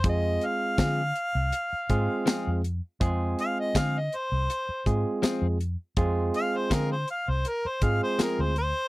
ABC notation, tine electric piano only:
X:1
M:4/4
L:1/8
Q:1/4=81
K:Fdor
V:1 name="Tine electric piano"
[A,CFA]3 z2 [A,CFA]2 z | [A,CFA]3 z2 [A,CFA]2 z | [A,CFA]3 z2 [A,CFA]2 z |]